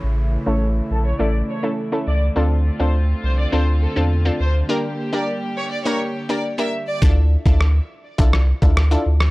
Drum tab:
SD |----------------|----------------|----------------|----r----r--r--r|
BD |----------------|----------------|----------------|o--o----o--o----|